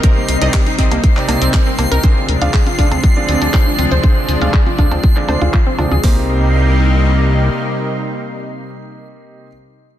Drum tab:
HH |x-oxxxoxx-oxx-ox|x-oxxxoxx-oxx-ox|x-oxxxoxx-oxx-ox|o---------------|
CB |-------x--x---x-|-------x--------|-------x--x---x-|----------------|
CP |----x----x--x---|----x-------x---|----x----x--x---|----------------|
CG |-----o----o----o|-----o----o----o|-----o----o----o|----------------|
BD |o---o-o-o---o---|o---o-o-o---o---|o---o-o-o---o---|o---------------|

HH |----------------|
CB |----------------|
CP |----------------|
CG |----------------|
BD |----------------|